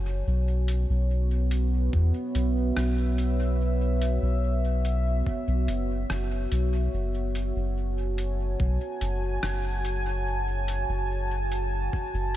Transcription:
Already playing: F#1 F#4 C#5 G#5 A5
0.27 B1 B3
0.68 closed hi-hat
0.90 B1
1.36 E5
1.51 closed hi-hat
1.93 E2, kick
2.35 B1, closed hi-hat
2.77 B1, cross-stick
3.18 closed hi-hat
4.02 closed hi-hat
4.22 B1
4.85 closed hi-hat
5.27 kick
5.48 B1
5.68 F#1, closed hi-hat
6.10 F#1, cross-stick
6.52 B1, closed hi-hat
6.94 F#1
7.35 closed hi-hat
7.44 G#5
7.56 F#1
7.73 A5
8.18 closed hi-hat
8.60 B1, kick
9.01 F#1, closed hi-hat
9.43 F#1, cross-stick
9.85 closed hi-hat
10.68 closed hi-hat
10.89 F#1
11.52 closed hi-hat
11.93 kick
12.14 F#1

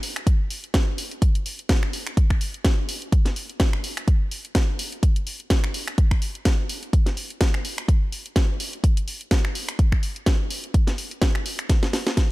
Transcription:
0.03 open hi-hat
0.16 finger snap, closed hi-hat
0.27 kick, closed hi-hat
0.50 open hi-hat
0.64 closed hi-hat
0.74 kick, snare, closed hi-hat
0.98 open hi-hat
1.11 closed hi-hat
1.22 kick, closed hi-hat
1.35 closed hi-hat
1.46 open hi-hat
1.59 closed hi-hat
1.69 kick, snare, closed hi-hat
1.83 finger snap
1.93 open hi-hat
2.07 finger snap, closed hi-hat
2.17 kick, closed hi-hat
2.30 finger snap, kick
2.41 open hi-hat
2.54 closed hi-hat
2.65 kick, snare, closed hi-hat
2.89 open hi-hat
3.02 closed hi-hat
3.12 kick, closed hi-hat
3.25 snare, closed hi-hat
3.36 open hi-hat
3.50 closed hi-hat
3.60 kick, snare, closed hi-hat
3.73 finger snap
3.84 open hi-hat
3.97 finger snap, closed hi-hat
4.08 kick, closed hi-hat
4.31 open hi-hat
4.45 closed hi-hat
4.55 kick, snare, closed hi-hat
4.79 open hi-hat
4.92 closed hi-hat
5.03 kick, closed hi-hat
5.16 closed hi-hat
5.27 open hi-hat
5.40 closed hi-hat
5.50 kick, snare, closed hi-hat
5.64 finger snap
5.74 open hi-hat
5.88 finger snap, closed hi-hat
5.98 kick, closed hi-hat
6.11 finger snap, kick
6.22 open hi-hat
6.35 closed hi-hat
6.45 kick, snare, closed hi-hat
6.69 open hi-hat
6.83 closed hi-hat
6.93 kick, closed hi-hat
7.06 snare, closed hi-hat
7.17 open hi-hat
7.30 closed hi-hat
7.41 kick, snare, closed hi-hat
7.54 finger snap
7.65 open hi-hat
7.78 finger snap, closed hi-hat
7.88 kick, closed hi-hat
8.12 open hi-hat
8.26 closed hi-hat
8.36 kick, snare, closed hi-hat
8.60 open hi-hat
8.73 closed hi-hat
8.84 kick, closed hi-hat
8.97 closed hi-hat
9.08 open hi-hat
9.21 closed hi-hat
9.31 kick, snare, closed hi-hat
9.45 finger snap
9.55 open hi-hat
9.69 finger snap, closed hi-hat
9.79 kick, closed hi-hat
9.92 finger snap, kick
10.03 open hi-hat
10.16 closed hi-hat
10.26 kick, snare, closed hi-hat
10.51 open hi-hat
10.64 closed hi-hat
10.74 kick, closed hi-hat
10.87 snare, closed hi-hat
10.98 open hi-hat
11.11 closed hi-hat
11.22 kick, snare, closed hi-hat
11.35 finger snap
11.46 open hi-hat
11.59 finger snap, closed hi-hat
11.69 kick, snare, closed hi-hat
11.83 snare, closed hi-hat
11.93 snare, open hi-hat
12.07 snare, closed hi-hat
12.17 kick, snare, closed hi-hat

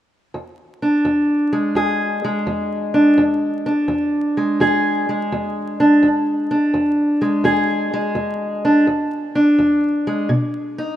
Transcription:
0.34 E2
0.82 D4
1.05 E2
1.53 G#3
1.75 E2 G#4
2.24 G#3
2.47 E2
2.94 D4
3.18 E2
3.66 D4
3.88 E2
4.37 G#3
4.60 E2 G#4
5.09 G#3
5.32 E2
5.80 D4
6.03 E2
6.51 D4
6.74 E2
7.22 G#3
7.44 E2 G#4
7.93 G#3
8.15 E2
8.65 D4
8.87 E2
9.35 D4
9.58 E2
10.07 G#3
10.29 B2
10.78 D#4

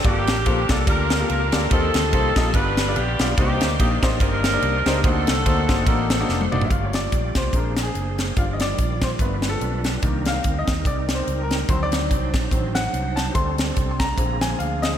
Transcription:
0.04 G1 G2 A#3 D4 F4 G4 A4 A#4 D5 F5 A5, kick, ride
0.27 A1, snare, ride
0.46 A#1 A#3 F4 G4 A4 C5, kick, ride
0.69 C2 A#3 F4 G4 A4 D5, kick, snare, ride
0.87 D2 A#3 D4 F4 G4 A4 A#4 D5, kick, ride
1.10 snare, ride
1.20 A#3 F4 G4 A4 F5
1.29 C#2 D4 F4 A#4, ride
1.52 D2 A#3 F4 G4 A4 D5, snare, ride
1.71 D#2 D#3 A#3 C4 D#4 F4 G4 A4 C5 D#5 C6, kick, ride
1.94 D2, snare, ride
2.13 C2 A#3 D#4 F4 G4 C5, kick, ride
2.36 A#1 A#3 D#4 F4 G4 D#5, kick, snare, ride
2.54 G1 G2 B3 D4 F4 G4 B4 D5 B5, kick, ride
2.77 snare, ride
2.88 B3 D4 F4 G4 D5
2.95 A#1 B3 D4 G4, ride
3.19 B1 B3 D4 F4 G4 D5, snare, ride
3.36 C2 C3 A#3 D4 D#4 G4 C5 C6, kick, ride
3.61 D2, snare, ride
3.80 A#1 A#3 D4 D#4 G4 D#5, kick, ride
4.03 A1 A#3 D4 D#4 G4 C5, kick, snare, ride
4.20 G1 A#3 D4 D#4 G4 A#4 C5, kick, ride
4.44 snare, ride
4.53 A#3 D4 D#4 G4 D5
4.62 C2, ride
4.86 C#2 A#3 D4 D#4 G4 C5, snare, ride
5.04 D2 D3 A#3 C4 D4 D#4 F#4 A4 C5 F#5 C6, kick, ride
5.27 C2, snare, ride
5.46 D2 A#3 D4 D#4 F#4 C5, kick, ride
5.69 G1 A#3 D4 D#4 F#4 C5, kick, snare, ride
5.87 A1 A#3 D4 D#4 F#4 A#4, kick, ride
6.10 snare, ride
6.20 A#3 D4 D#4 F#4 A4
6.29 F1, snare
6.41 high tom
6.52 F#1 A#3 D4 D#4 F#4 D5, mid tom
6.61 E5, floor tom
6.69 G1 G3 A3 A#3 F4 G4 D5 F5, kick, closed hi-hat
6.85 C#5
6.93 D5, snare, closed hi-hat
7.12 A#1, kick, closed hi-hat
7.35 C2 C5, kick, snare, closed hi-hat
7.53 A#1 G#3 A#3 C4 D4 G#4 A#4 C5, kick, closed hi-hat
7.77 snare, closed hi-hat
7.83 G#4
7.95 F#1, closed hi-hat
8.18 snare, closed hi-hat
8.36 G1 D#3 F3 G3 D4 F4 D5 F5, kick, closed hi-hat
8.53 D#5
8.60 D5, snare, closed hi-hat
8.78 A#1, kick, closed hi-hat
9.01 C5, kick, snare, closed hi-hat
9.19 G1 F3 G3 A3 B3 D4 B4, kick, closed hi-hat
9.42 snare, closed hi-hat
9.49 A4
9.61 B1, closed hi-hat
9.84 snare, closed hi-hat
10.03 C2 D#3 A#3 C4 D4 D#4 A#4, kick, closed hi-hat
10.25 F5, snare, closed hi-hat
10.44 D2, kick, closed hi-hat
10.59 D#5
10.67 D#2, kick, snare, closed hi-hat
10.85 C2 D5, kick, closed hi-hat
11.09 snare, closed hi-hat
11.15 C5
11.27 C#2, closed hi-hat
11.43 A#4
11.51 snare, closed hi-hat
11.68 D2 D#3 F#3 C4 D4 C5, kick, closed hi-hat
11.83 D5
11.92 snare, closed hi-hat
12.11 C2, kick, closed hi-hat
12.34 A#1, kick, snare, closed hi-hat
12.51 A1 D#3 F#3 C4, kick, closed hi-hat
12.75 F#5, snare, closed hi-hat
12.93 C2, closed hi-hat
13.16 A5, snare, closed hi-hat
13.33 D2 G3 A3 C4 D4 A4 C6, kick, closed hi-hat
13.58 snare, closed hi-hat
13.77 C2, kick, closed hi-hat
13.91 C6
14.00 A#5, kick, snare, closed hi-hat
14.17 A#1 D3 F3 G#3 A#3 C4 G#4, kick, closed hi-hat
14.41 G#5, snare, closed hi-hat
14.59 D2 F5, closed hi-hat
14.82 D#5, snare, closed hi-hat

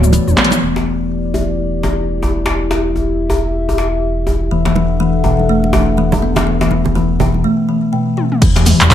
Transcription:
Already playing: D1 B3 F#4 C#5 D5
0.03 mid tom, cabasa
0.12 E3, closed hi-hat, muted conga, high conga, cabasa
0.27 E1, high tom, cabasa
0.36 B3, clap, closed hi-hat, mid tom, djembe tone, high conga
0.45 closed hi-hat
0.51 closed hi-hat, mid tom, muted conga, high conga, cabasa
0.62 E1 E4 G4 D5
0.76 djembe slap
1.34 djembe tone
1.83 djembe slap, djembe tone
2.23 djembe tone
2.46 djembe slap
2.57 E5
2.71 djembe slap
2.96 djembe tone
3.30 djembe tone
3.69 djembe tone
3.78 djembe slap
4.27 djembe tone
4.51 E1 E3 D4 A4 E5 F#5
4.65 E3, djembe slap
4.76 E3, muted conga, high conga
5.00 E3
5.24 B2, muted conga, djembe tone
5.39 high conga
5.49 A3
5.64 muted conga
5.73 E3, djembe slap, djembe tone
5.97 E3, muted conga
6.12 high conga, djembe tone, low conga
6.22 B3, high conga
6.36 djembe slap, muted conga, low conga
6.47 E3
6.61 E3, djembe slap
6.71 E3, muted conga, high conga
6.85 djembe tone, low conga
6.95 E3, djembe tone
7.19 B2, muted conga, djembe tone, low conga
7.34 high conga
7.44 A3
7.69 E3
7.93 B2
8.17 B2, high tom
8.32 mid tom
8.42 E1 E3 E4 G4 D5, kick, closed hi-hat, crash, high conga, cabasa
8.56 E3, closed hi-hat, djembe slap, cabasa
8.66 E3, mid tom, open hi-hat, muted conga, cabasa
8.81 E1, clap, closed hi-hat, high conga, cabasa
8.90 E3, kick, clap, closed hi-hat, cabasa

